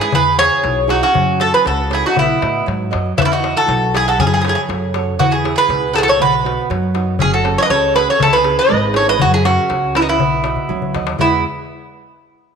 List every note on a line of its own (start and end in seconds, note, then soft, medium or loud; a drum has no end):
0.00 0.11 G#3 medium
0.00 0.12 E4 medium
0.00 0.12 G#4 medium
0.12 0.48 E2 medium
0.12 0.62 E3 medium
0.12 0.37 G#4 medium
0.12 0.37 B4 medium
0.12 darbuka dum medium
0.26 darbuka tek soft
0.38 0.79 B3 medium
0.38 0.79 E4 soft
0.38 0.79 G#4 soft
0.38 0.86 G#4 medium
0.38 0.91 C#5 loud
0.38 darbuka tek medium
0.64 0.99 B1 loud
0.64 1.13 B2 medium
0.64 darbuka tek medium
0.87 1.08 B3 soft
0.87 1.01 D#4 medium
0.87 1.08 E4 soft
0.87 1.02 F#4 medium
0.87 1.08 G#4 soft
0.87 darbuka tek medium
1.03 1.38 C#4 medium
1.03 1.38 F#4 medium
1.14 1.50 F#2 medium
1.14 1.63 F#3 medium
1.14 darbuka dum medium
1.28 darbuka tek soft
1.40 1.80 C#4 soft
1.40 1.80 F#4 soft
1.40 1.52 F#4 medium
1.40 1.81 A4 medium
1.40 1.53 A4 medium
1.40 darbuka tek medium
1.54 1.65 G#4 medium
1.54 1.65 B4 medium
1.65 2.01 C#2 medium
1.65 2.14 C#3 medium
1.65 1.90 F#4 medium
1.65 1.92 A4 medium
1.65 darbuka tek medium
1.90 2.11 C#4 soft
1.90 2.04 E4 medium
1.90 2.11 F#4 soft
1.90 2.11 A4 soft
1.90 darbuka tek medium
1.94 2.04 G#4 medium
2.06 2.17 D#4 medium
2.06 2.17 F#4 medium
2.15 2.34 B1 medium
2.15 2.41 B3 medium
2.15 2.65 E4 medium
2.15 darbuka dum medium
2.20 2.66 B3 medium
2.30 darbuka tek soft
2.41 2.65 A2 medium
2.41 2.82 F#4 soft
2.41 2.82 B4 soft
2.41 2.82 D#5 medium
2.41 darbuka tek medium
2.55 darbuka tek soft
2.66 2.90 G#2 medium
2.66 3.16 F#3 medium
2.66 darbuka tek medium
2.91 3.16 F#2 medium
2.91 3.12 F#4 soft
2.91 3.11 B4 soft
2.91 3.12 D#5 soft
2.91 darbuka tek medium
3.06 darbuka tek soft
3.17 3.53 E2 medium
3.17 3.66 E3 medium
3.17 3.21 B3 medium
3.17 3.21 E4 medium
3.17 darbuka dum loud
3.22 3.31 C#4 medium
3.22 3.24 D#4 medium
3.22 3.30 E4 medium
3.22 3.24 F#4 medium
3.32 3.54 D#4 medium
3.32 3.57 F#4 medium
3.43 3.84 E4 soft
3.43 3.84 B4 medium
3.43 darbuka tek medium
3.57 3.91 F#4 medium
3.57 3.95 A4 medium
3.68 4.20 B1 medium
3.68 4.17 B2 medium
3.68 darbuka tek medium
3.94 4.14 E4 soft
3.94 4.06 E4 medium
3.94 4.14 G#4 soft
3.94 4.08 G#4 medium
3.94 4.14 B4 soft
3.94 darbuka tek medium
4.08 4.19 F#4 medium
4.08 4.19 A4 medium
4.19 4.54 F#2 medium
4.19 4.68 F#3 medium
4.19 4.26 C#4 medium
4.19 4.26 G#4 medium
4.19 darbuka dum medium
4.27 4.33 E4 medium
4.27 4.33 G#4 medium
4.34 4.40 E4 medium
4.34 4.40 G#4 medium
4.41 4.47 E4 medium
4.41 4.84 F#4 soft
4.41 4.47 G#4 medium
4.41 darbuka tek medium
4.45 4.54 E4 medium
4.45 4.85 A4 soft
4.45 4.85 C#5 medium
4.49 4.54 G#4 medium
4.55 4.61 E4 medium
4.55 4.61 G#4 medium
4.69 5.18 F#2 medium
4.69 5.18 C#3 medium
4.69 darbuka tek medium
4.94 5.14 F#4 soft
4.94 5.14 A4 soft
4.94 5.15 C#5 medium
4.94 darbuka tek medium
5.18 5.54 E2 medium
5.18 5.68 E3 medium
5.18 5.31 B3 medium
5.18 5.32 F#4 medium
5.18 darbuka dum loud
5.31 5.55 E4 medium
5.31 5.58 G#4 medium
5.44 5.85 E4 soft
5.44 5.85 G#4 soft
5.44 5.85 B4 soft
5.44 darbuka tek medium
5.56 5.92 G#4 medium
5.56 5.93 B4 medium
5.69 6.20 C#2 medium
5.69 6.18 B2 medium
5.69 darbuka tek medium
5.93 6.15 E4 soft
5.93 6.00 E4 medium
5.93 5.96 F#4 medium
5.93 6.15 G#4 soft
5.93 5.98 A4 medium
5.93 6.15 B4 medium
5.93 darbuka tek medium
5.98 6.07 F#4 medium
5.98 6.01 G#4 medium
6.03 6.08 A4 loud
6.08 6.19 A4 medium
6.08 6.20 C#5 medium
6.19 6.55 B1 medium
6.19 6.68 B2 medium
6.19 6.67 F#4 medium
6.19 6.68 B4 loud
6.19 darbuka dum medium
6.44 6.85 B3 soft
6.44 6.85 D#4 soft
6.44 6.85 F#4 medium
6.44 darbuka tek medium
6.70 7.21 F#2 loud
6.70 7.19 F#3 medium
6.70 darbuka tek medium
6.83 darbuka tek soft
6.94 7.15 B3 soft
6.94 7.15 D#4 soft
6.94 7.15 F#4 medium
6.94 darbuka tek medium
7.19 7.55 F#1 medium
7.19 7.69 F#3 medium
7.19 7.32 C#4 medium
7.19 7.33 G#4 loud
7.19 darbuka dum medium
7.33 7.57 F#4 medium
7.33 7.57 A4 medium
7.44 7.84 C#4 soft
7.44 7.85 F#4 soft
7.44 7.85 A4 medium
7.44 darbuka tek medium
7.58 7.65 A4 medium
7.58 7.62 C#5 medium
7.62 7.71 B4 medium
7.62 7.70 D#5 medium
7.70 8.05 C#2 medium
7.70 8.19 C#3 medium
7.70 7.95 A4 medium
7.70 7.93 C#5 medium
7.70 darbuka tek medium
7.94 8.15 C#4 soft
7.94 8.15 F#4 soft
7.94 8.15 A4 medium
7.94 8.07 B4 medium
7.94 darbuka tek medium
7.98 8.09 G#4 medium
8.10 8.21 A4 medium
8.10 8.21 C#5 medium
8.20 8.56 C#2 medium
8.20 8.69 C#3 medium
8.20 8.34 E4 medium
8.20 8.34 A4 loud
8.20 darbuka dum loud
8.33 8.58 G#4 medium
8.33 8.58 B4 medium
8.43 8.84 C#4 soft
8.43 8.85 E4 soft
8.43 8.85 G#4 medium
8.43 darbuka tek medium
8.59 8.95 B4 medium
8.59 8.96 D#5 medium
8.68 9.23 G#1 loud
8.68 9.18 G#3 medium
8.68 darbuka tek medium
8.93 9.14 C#4 soft
8.93 9.14 E4 soft
8.93 9.14 G#4 soft
8.93 9.08 C#5 medium
8.93 darbuka tek medium
8.97 9.08 A4 medium
9.09 9.20 B4 medium
9.09 9.21 D#5 loud
9.19 9.56 F#2 loud
9.19 9.68 F#3 medium
9.19 9.33 C#4 medium
9.19 9.33 F#4 medium
9.19 darbuka dum medium
9.34 9.45 E4 medium
9.34 9.45 G#4 medium
9.44 9.85 C#4 medium
9.44 9.92 C#4 medium
9.44 9.85 F#4 soft
9.44 9.96 F#4 medium
9.44 9.85 A#4 soft
9.44 darbuka tek medium
9.69 10.20 C#2 medium
9.69 10.18 C#3 medium
9.69 darbuka tek medium
9.95 10.15 C#4 soft
9.95 10.01 C#4 medium
9.95 10.02 E4 medium
9.95 10.15 F#4 soft
9.95 10.15 A#4 medium
9.95 darbuka tek medium
10.01 10.07 B3 medium
10.01 10.08 D#4 medium
10.09 10.91 B3 medium
10.09 10.91 E4 medium
10.20 10.55 B1 medium
10.20 10.44 B3 medium
10.20 darbuka dum medium
10.32 darbuka tek soft
10.44 10.85 F#4 medium
10.44 10.85 B4 soft
10.44 10.85 D#5 soft
10.44 darbuka tek medium
10.56 darbuka dum medium
10.69 10.92 C#2 medium
10.69 11.18 F#3 medium
10.69 darbuka dum medium
10.82 darbuka dum medium
10.95 11.17 D#2 medium
10.95 11.15 F#4 soft
10.95 11.15 B4 soft
10.95 11.15 D#5 medium
10.95 darbuka tek medium
11.07 darbuka tek medium
11.18 11.42 E2 medium
11.18 11.43 E2 medium
11.18 11.42 B2 soft
11.18 11.42 E3 soft
11.18 11.43 G#3 medium
11.18 11.43 B3 medium
11.18 11.43 E4 medium
11.18 darbuka dum medium